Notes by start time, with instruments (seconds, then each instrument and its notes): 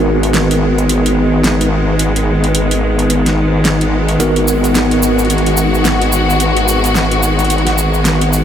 Already playing: wobble bass G#1, string section D#3 G#3 B3, tine electric piano B3 D#4 F#4 A#4
0.23 closed hi-hat
0.34 snare, closed hi-hat
0.51 closed hi-hat
0.78 closed hi-hat
0.89 closed hi-hat
1.06 closed hi-hat
1.44 snare, closed hi-hat
1.61 closed hi-hat
1.99 closed hi-hat
2.16 closed hi-hat
2.44 closed hi-hat
2.55 closed hi-hat
2.71 closed hi-hat
2.99 closed hi-hat
3.10 closed hi-hat
3.26 snare, closed hi-hat
3.65 snare, closed hi-hat
3.81 closed hi-hat
4.09 closed hi-hat
4.19 wobble bass G#1, tine electric piano B3 D#4 F#4 A#4, string section F#4, closed hi-hat, cabasa
4.36 closed hi-hat
4.48 cabasa
4.64 closed hi-hat, cabasa
4.75 snare, closed hi-hat, cabasa
4.91 closed hi-hat
5.03 cabasa
5.19 closed hi-hat, cabasa
5.25 closed hi-hat
5.30 closed hi-hat, cabasa
5.38 closed hi-hat
5.46 closed hi-hat
5.57 cabasa
5.74 cabasa
5.85 snare, closed hi-hat, cabasa
6.02 closed hi-hat
6.12 cabasa
6.30 cabasa
6.40 closed hi-hat, cabasa
6.57 closed hi-hat
6.68 cabasa
6.84 closed hi-hat, cabasa
6.95 snare, cabasa
7.12 closed hi-hat
7.23 cabasa
7.39 closed hi-hat, cabasa
7.45 closed hi-hat
7.50 closed hi-hat, cabasa
7.58 closed hi-hat
7.67 snare, closed hi-hat
7.78 cabasa
7.94 cabasa
8.05 snare, closed hi-hat, cabasa
8.21 closed hi-hat
8.33 cabasa